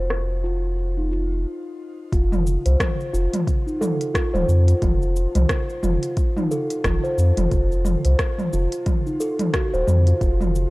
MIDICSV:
0, 0, Header, 1, 4, 480
1, 0, Start_track
1, 0, Key_signature, -1, "major"
1, 0, Tempo, 674157
1, 1512, Time_signature, 4, 2, 24, 8
1, 7619, End_track
2, 0, Start_track
2, 0, Title_t, "Steel tongue drum"
2, 0, Program_c, 0, 114
2, 0, Note_on_c, 0, 72, 66
2, 301, Note_off_c, 0, 72, 0
2, 311, Note_on_c, 0, 65, 84
2, 677, Note_off_c, 0, 65, 0
2, 692, Note_on_c, 0, 63, 68
2, 782, Note_off_c, 0, 63, 0
2, 792, Note_on_c, 0, 65, 70
2, 871, Note_off_c, 0, 65, 0
2, 1512, Note_on_c, 0, 65, 97
2, 1644, Note_off_c, 0, 65, 0
2, 1891, Note_on_c, 0, 72, 76
2, 2222, Note_off_c, 0, 72, 0
2, 2231, Note_on_c, 0, 65, 94
2, 2596, Note_off_c, 0, 65, 0
2, 2610, Note_on_c, 0, 63, 73
2, 2701, Note_off_c, 0, 63, 0
2, 2711, Note_on_c, 0, 69, 99
2, 2844, Note_off_c, 0, 69, 0
2, 2949, Note_on_c, 0, 65, 102
2, 3076, Note_off_c, 0, 65, 0
2, 3088, Note_on_c, 0, 72, 100
2, 3147, Note_off_c, 0, 72, 0
2, 3329, Note_on_c, 0, 65, 77
2, 3421, Note_off_c, 0, 65, 0
2, 3434, Note_on_c, 0, 65, 98
2, 3565, Note_off_c, 0, 65, 0
2, 3813, Note_on_c, 0, 72, 71
2, 4142, Note_off_c, 0, 72, 0
2, 4153, Note_on_c, 0, 65, 98
2, 4518, Note_off_c, 0, 65, 0
2, 4533, Note_on_c, 0, 63, 74
2, 4623, Note_off_c, 0, 63, 0
2, 4637, Note_on_c, 0, 69, 102
2, 4766, Note_off_c, 0, 69, 0
2, 4875, Note_on_c, 0, 65, 95
2, 4999, Note_off_c, 0, 65, 0
2, 5010, Note_on_c, 0, 72, 96
2, 5068, Note_off_c, 0, 72, 0
2, 5252, Note_on_c, 0, 65, 74
2, 5342, Note_off_c, 0, 65, 0
2, 5350, Note_on_c, 0, 65, 90
2, 5483, Note_off_c, 0, 65, 0
2, 5733, Note_on_c, 0, 72, 75
2, 6063, Note_off_c, 0, 72, 0
2, 6074, Note_on_c, 0, 65, 97
2, 6438, Note_off_c, 0, 65, 0
2, 6454, Note_on_c, 0, 63, 72
2, 6543, Note_off_c, 0, 63, 0
2, 6553, Note_on_c, 0, 69, 96
2, 6684, Note_off_c, 0, 69, 0
2, 6793, Note_on_c, 0, 66, 97
2, 6918, Note_off_c, 0, 66, 0
2, 6933, Note_on_c, 0, 72, 103
2, 6989, Note_off_c, 0, 72, 0
2, 7173, Note_on_c, 0, 65, 73
2, 7263, Note_off_c, 0, 65, 0
2, 7271, Note_on_c, 0, 65, 92
2, 7404, Note_off_c, 0, 65, 0
2, 7619, End_track
3, 0, Start_track
3, 0, Title_t, "Sub bass"
3, 0, Program_c, 1, 38
3, 0, Note_on_c, 1, 29, 81
3, 1033, Note_off_c, 1, 29, 0
3, 1513, Note_on_c, 1, 29, 93
3, 1828, Note_off_c, 1, 29, 0
3, 1892, Note_on_c, 1, 36, 84
3, 1964, Note_off_c, 1, 36, 0
3, 2232, Note_on_c, 1, 29, 91
3, 2332, Note_off_c, 1, 29, 0
3, 3089, Note_on_c, 1, 27, 92
3, 3162, Note_off_c, 1, 27, 0
3, 3191, Note_on_c, 1, 41, 92
3, 3374, Note_off_c, 1, 41, 0
3, 3433, Note_on_c, 1, 29, 98
3, 3748, Note_off_c, 1, 29, 0
3, 3812, Note_on_c, 1, 36, 87
3, 3883, Note_off_c, 1, 36, 0
3, 4153, Note_on_c, 1, 29, 94
3, 4252, Note_off_c, 1, 29, 0
3, 4873, Note_on_c, 1, 29, 108
3, 4972, Note_off_c, 1, 29, 0
3, 5111, Note_on_c, 1, 41, 75
3, 5211, Note_off_c, 1, 41, 0
3, 5250, Note_on_c, 1, 29, 100
3, 5322, Note_off_c, 1, 29, 0
3, 5352, Note_on_c, 1, 29, 94
3, 5668, Note_off_c, 1, 29, 0
3, 5732, Note_on_c, 1, 36, 86
3, 5804, Note_off_c, 1, 36, 0
3, 6075, Note_on_c, 1, 29, 94
3, 6173, Note_off_c, 1, 29, 0
3, 6932, Note_on_c, 1, 27, 96
3, 7004, Note_off_c, 1, 27, 0
3, 7031, Note_on_c, 1, 41, 98
3, 7214, Note_off_c, 1, 41, 0
3, 7271, Note_on_c, 1, 29, 98
3, 7587, Note_off_c, 1, 29, 0
3, 7619, End_track
4, 0, Start_track
4, 0, Title_t, "Drums"
4, 73, Note_on_c, 9, 37, 87
4, 78, Note_on_c, 9, 82, 40
4, 144, Note_off_c, 9, 37, 0
4, 149, Note_off_c, 9, 82, 0
4, 218, Note_on_c, 9, 82, 18
4, 289, Note_off_c, 9, 82, 0
4, 319, Note_on_c, 9, 82, 68
4, 390, Note_off_c, 9, 82, 0
4, 457, Note_on_c, 9, 82, 31
4, 528, Note_off_c, 9, 82, 0
4, 559, Note_on_c, 9, 82, 41
4, 630, Note_off_c, 9, 82, 0
4, 697, Note_on_c, 9, 82, 21
4, 768, Note_off_c, 9, 82, 0
4, 798, Note_on_c, 9, 82, 67
4, 869, Note_off_c, 9, 82, 0
4, 937, Note_on_c, 9, 82, 32
4, 1008, Note_off_c, 9, 82, 0
4, 1513, Note_on_c, 9, 36, 103
4, 1514, Note_on_c, 9, 42, 43
4, 1519, Note_on_c, 9, 82, 39
4, 1584, Note_off_c, 9, 36, 0
4, 1585, Note_off_c, 9, 42, 0
4, 1590, Note_off_c, 9, 82, 0
4, 1654, Note_on_c, 9, 45, 74
4, 1658, Note_on_c, 9, 82, 22
4, 1725, Note_off_c, 9, 45, 0
4, 1730, Note_off_c, 9, 82, 0
4, 1757, Note_on_c, 9, 82, 73
4, 1828, Note_off_c, 9, 82, 0
4, 1892, Note_on_c, 9, 42, 61
4, 1896, Note_on_c, 9, 82, 34
4, 1963, Note_off_c, 9, 42, 0
4, 1968, Note_off_c, 9, 82, 0
4, 1993, Note_on_c, 9, 36, 98
4, 1994, Note_on_c, 9, 37, 107
4, 1994, Note_on_c, 9, 42, 47
4, 1994, Note_on_c, 9, 45, 75
4, 1999, Note_on_c, 9, 82, 44
4, 2064, Note_off_c, 9, 36, 0
4, 2066, Note_off_c, 9, 37, 0
4, 2066, Note_off_c, 9, 42, 0
4, 2066, Note_off_c, 9, 45, 0
4, 2071, Note_off_c, 9, 82, 0
4, 2137, Note_on_c, 9, 82, 22
4, 2209, Note_off_c, 9, 82, 0
4, 2239, Note_on_c, 9, 82, 72
4, 2310, Note_off_c, 9, 82, 0
4, 2374, Note_on_c, 9, 42, 57
4, 2374, Note_on_c, 9, 45, 75
4, 2379, Note_on_c, 9, 82, 33
4, 2446, Note_off_c, 9, 42, 0
4, 2446, Note_off_c, 9, 45, 0
4, 2450, Note_off_c, 9, 82, 0
4, 2473, Note_on_c, 9, 36, 104
4, 2474, Note_on_c, 9, 42, 42
4, 2479, Note_on_c, 9, 82, 45
4, 2544, Note_off_c, 9, 36, 0
4, 2546, Note_off_c, 9, 42, 0
4, 2551, Note_off_c, 9, 82, 0
4, 2619, Note_on_c, 9, 82, 21
4, 2690, Note_off_c, 9, 82, 0
4, 2716, Note_on_c, 9, 45, 77
4, 2720, Note_on_c, 9, 82, 77
4, 2787, Note_off_c, 9, 45, 0
4, 2792, Note_off_c, 9, 82, 0
4, 2854, Note_on_c, 9, 42, 56
4, 2859, Note_on_c, 9, 82, 33
4, 2926, Note_off_c, 9, 42, 0
4, 2931, Note_off_c, 9, 82, 0
4, 2953, Note_on_c, 9, 36, 97
4, 2955, Note_on_c, 9, 37, 97
4, 2955, Note_on_c, 9, 42, 49
4, 2960, Note_on_c, 9, 82, 44
4, 3024, Note_off_c, 9, 36, 0
4, 3026, Note_off_c, 9, 37, 0
4, 3026, Note_off_c, 9, 42, 0
4, 3031, Note_off_c, 9, 82, 0
4, 3095, Note_on_c, 9, 45, 76
4, 3100, Note_on_c, 9, 82, 21
4, 3166, Note_off_c, 9, 45, 0
4, 3171, Note_off_c, 9, 82, 0
4, 3197, Note_on_c, 9, 82, 72
4, 3269, Note_off_c, 9, 82, 0
4, 3333, Note_on_c, 9, 42, 56
4, 3338, Note_on_c, 9, 82, 34
4, 3405, Note_off_c, 9, 42, 0
4, 3409, Note_off_c, 9, 82, 0
4, 3432, Note_on_c, 9, 42, 44
4, 3432, Note_on_c, 9, 45, 67
4, 3433, Note_on_c, 9, 36, 104
4, 3437, Note_on_c, 9, 82, 45
4, 3504, Note_off_c, 9, 36, 0
4, 3504, Note_off_c, 9, 42, 0
4, 3504, Note_off_c, 9, 45, 0
4, 3508, Note_off_c, 9, 82, 0
4, 3576, Note_on_c, 9, 82, 22
4, 3647, Note_off_c, 9, 82, 0
4, 3676, Note_on_c, 9, 82, 76
4, 3747, Note_off_c, 9, 82, 0
4, 3811, Note_on_c, 9, 42, 55
4, 3811, Note_on_c, 9, 45, 81
4, 3816, Note_on_c, 9, 82, 36
4, 3882, Note_off_c, 9, 42, 0
4, 3882, Note_off_c, 9, 45, 0
4, 3887, Note_off_c, 9, 82, 0
4, 3911, Note_on_c, 9, 37, 105
4, 3911, Note_on_c, 9, 42, 43
4, 3913, Note_on_c, 9, 36, 103
4, 3916, Note_on_c, 9, 82, 47
4, 3982, Note_off_c, 9, 37, 0
4, 3982, Note_off_c, 9, 42, 0
4, 3984, Note_off_c, 9, 36, 0
4, 3987, Note_off_c, 9, 82, 0
4, 4055, Note_on_c, 9, 82, 22
4, 4126, Note_off_c, 9, 82, 0
4, 4151, Note_on_c, 9, 45, 74
4, 4156, Note_on_c, 9, 82, 79
4, 4222, Note_off_c, 9, 45, 0
4, 4227, Note_off_c, 9, 82, 0
4, 4292, Note_on_c, 9, 42, 56
4, 4296, Note_on_c, 9, 82, 34
4, 4363, Note_off_c, 9, 42, 0
4, 4368, Note_off_c, 9, 82, 0
4, 4392, Note_on_c, 9, 42, 45
4, 4393, Note_on_c, 9, 36, 110
4, 4396, Note_on_c, 9, 82, 49
4, 4463, Note_off_c, 9, 42, 0
4, 4464, Note_off_c, 9, 36, 0
4, 4468, Note_off_c, 9, 82, 0
4, 4532, Note_on_c, 9, 45, 74
4, 4537, Note_on_c, 9, 82, 21
4, 4603, Note_off_c, 9, 45, 0
4, 4608, Note_off_c, 9, 82, 0
4, 4638, Note_on_c, 9, 82, 77
4, 4710, Note_off_c, 9, 82, 0
4, 4773, Note_on_c, 9, 42, 53
4, 4778, Note_on_c, 9, 82, 32
4, 4844, Note_off_c, 9, 42, 0
4, 4849, Note_off_c, 9, 82, 0
4, 4872, Note_on_c, 9, 36, 96
4, 4872, Note_on_c, 9, 37, 106
4, 4872, Note_on_c, 9, 42, 44
4, 4872, Note_on_c, 9, 45, 75
4, 4877, Note_on_c, 9, 82, 47
4, 4943, Note_off_c, 9, 36, 0
4, 4943, Note_off_c, 9, 37, 0
4, 4943, Note_off_c, 9, 42, 0
4, 4943, Note_off_c, 9, 45, 0
4, 4948, Note_off_c, 9, 82, 0
4, 5016, Note_on_c, 9, 82, 21
4, 5087, Note_off_c, 9, 82, 0
4, 5116, Note_on_c, 9, 82, 77
4, 5187, Note_off_c, 9, 82, 0
4, 5250, Note_on_c, 9, 42, 57
4, 5250, Note_on_c, 9, 45, 77
4, 5255, Note_on_c, 9, 82, 34
4, 5321, Note_off_c, 9, 42, 0
4, 5321, Note_off_c, 9, 45, 0
4, 5326, Note_off_c, 9, 82, 0
4, 5351, Note_on_c, 9, 42, 38
4, 5352, Note_on_c, 9, 36, 102
4, 5356, Note_on_c, 9, 82, 40
4, 5422, Note_off_c, 9, 42, 0
4, 5423, Note_off_c, 9, 36, 0
4, 5427, Note_off_c, 9, 82, 0
4, 5496, Note_on_c, 9, 82, 24
4, 5567, Note_off_c, 9, 82, 0
4, 5588, Note_on_c, 9, 45, 71
4, 5593, Note_on_c, 9, 82, 80
4, 5660, Note_off_c, 9, 45, 0
4, 5665, Note_off_c, 9, 82, 0
4, 5730, Note_on_c, 9, 42, 58
4, 5735, Note_on_c, 9, 82, 37
4, 5801, Note_off_c, 9, 42, 0
4, 5806, Note_off_c, 9, 82, 0
4, 5831, Note_on_c, 9, 37, 100
4, 5831, Note_on_c, 9, 42, 42
4, 5832, Note_on_c, 9, 36, 104
4, 5836, Note_on_c, 9, 82, 46
4, 5902, Note_off_c, 9, 37, 0
4, 5902, Note_off_c, 9, 42, 0
4, 5903, Note_off_c, 9, 36, 0
4, 5907, Note_off_c, 9, 82, 0
4, 5970, Note_on_c, 9, 45, 68
4, 5975, Note_on_c, 9, 82, 22
4, 6041, Note_off_c, 9, 45, 0
4, 6046, Note_off_c, 9, 82, 0
4, 6074, Note_on_c, 9, 82, 75
4, 6146, Note_off_c, 9, 82, 0
4, 6210, Note_on_c, 9, 42, 54
4, 6215, Note_on_c, 9, 82, 34
4, 6281, Note_off_c, 9, 42, 0
4, 6286, Note_off_c, 9, 82, 0
4, 6309, Note_on_c, 9, 42, 44
4, 6309, Note_on_c, 9, 45, 70
4, 6311, Note_on_c, 9, 36, 111
4, 6314, Note_on_c, 9, 82, 43
4, 6381, Note_off_c, 9, 42, 0
4, 6381, Note_off_c, 9, 45, 0
4, 6383, Note_off_c, 9, 36, 0
4, 6386, Note_off_c, 9, 82, 0
4, 6456, Note_on_c, 9, 82, 22
4, 6527, Note_off_c, 9, 82, 0
4, 6554, Note_on_c, 9, 82, 82
4, 6626, Note_off_c, 9, 82, 0
4, 6689, Note_on_c, 9, 42, 50
4, 6689, Note_on_c, 9, 45, 77
4, 6694, Note_on_c, 9, 82, 34
4, 6760, Note_off_c, 9, 42, 0
4, 6760, Note_off_c, 9, 45, 0
4, 6765, Note_off_c, 9, 82, 0
4, 6790, Note_on_c, 9, 37, 106
4, 6790, Note_on_c, 9, 42, 43
4, 6791, Note_on_c, 9, 36, 98
4, 6795, Note_on_c, 9, 82, 44
4, 6861, Note_off_c, 9, 37, 0
4, 6861, Note_off_c, 9, 42, 0
4, 6862, Note_off_c, 9, 36, 0
4, 6866, Note_off_c, 9, 82, 0
4, 6935, Note_on_c, 9, 82, 22
4, 7007, Note_off_c, 9, 82, 0
4, 7031, Note_on_c, 9, 45, 68
4, 7035, Note_on_c, 9, 82, 79
4, 7102, Note_off_c, 9, 45, 0
4, 7107, Note_off_c, 9, 82, 0
4, 7169, Note_on_c, 9, 42, 54
4, 7174, Note_on_c, 9, 82, 35
4, 7241, Note_off_c, 9, 42, 0
4, 7246, Note_off_c, 9, 82, 0
4, 7271, Note_on_c, 9, 36, 104
4, 7271, Note_on_c, 9, 42, 38
4, 7276, Note_on_c, 9, 82, 46
4, 7342, Note_off_c, 9, 36, 0
4, 7343, Note_off_c, 9, 42, 0
4, 7347, Note_off_c, 9, 82, 0
4, 7410, Note_on_c, 9, 45, 72
4, 7415, Note_on_c, 9, 82, 22
4, 7481, Note_off_c, 9, 45, 0
4, 7486, Note_off_c, 9, 82, 0
4, 7515, Note_on_c, 9, 82, 77
4, 7586, Note_off_c, 9, 82, 0
4, 7619, End_track
0, 0, End_of_file